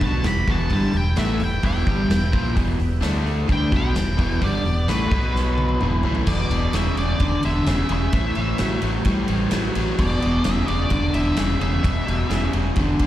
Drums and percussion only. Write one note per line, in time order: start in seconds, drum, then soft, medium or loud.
0.01 kick loud
0.01 open hi-hat soft
0.23 snare loud
0.23 open hi-hat medium
0.47 kick loud
0.47 open hi-hat medium
0.69 kick loud
0.69 open hi-hat medium
0.93 open hi-hat medium
1.16 snare loud
1.16 open hi-hat medium
1.40 open hi-hat medium
1.63 kick medium
1.63 open hi-hat medium
1.86 kick loud
1.86 open hi-hat soft
2.10 snare loud
2.10 open hi-hat medium
2.33 kick loud
2.33 open hi-hat medium
2.57 kick loud
2.57 open hi-hat medium
2.79 open hi-hat medium
3.02 snare loud
3.02 open hi-hat medium
3.26 open hi-hat soft
3.49 kick medium
3.49 open hi-hat medium
3.72 kick loud
3.72 open hi-hat medium
3.95 snare loud
3.95 open hi-hat medium
4.19 kick loud
4.19 open hi-hat medium
4.42 kick loud
4.42 open hi-hat medium
4.65 open hi-hat soft
4.88 snare medium
4.88 open hi-hat medium
5.11 kick loud
5.11 open hi-hat medium
5.36 snare medium
5.58 high tom medium
5.69 high tom medium
5.81 mid tom medium
6.03 floor tom medium
6.15 floor tom medium
6.27 kick loud
6.27 crash loud
6.51 ride medium
6.73 snare medium
6.73 ride medium
6.97 ride medium
7.20 kick medium
7.20 ride medium
7.43 ride medium
7.66 snare loud
7.66 ride medium
7.89 ride medium
8.12 kick loud
8.12 ride medium
8.35 ride medium
8.58 snare loud
8.58 ride medium
8.82 ride medium
9.05 kick loud
9.05 ride medium
9.28 ride medium
9.51 snare loud
9.51 ride loud
9.75 ride medium
9.98 kick loud
9.98 crash medium
10.22 ride medium
10.44 snare loud
10.44 ride medium
10.68 ride medium
10.90 kick medium
10.90 ride medium
11.14 ride medium
11.36 snare loud
11.36 ride medium
11.61 ride medium
11.84 kick loud
11.84 ride loud
12.08 ride medium
12.30 snare medium
12.30 ride medium
12.53 ride medium
12.76 kick loud
12.76 ride medium
12.99 kick medium
12.99 ride medium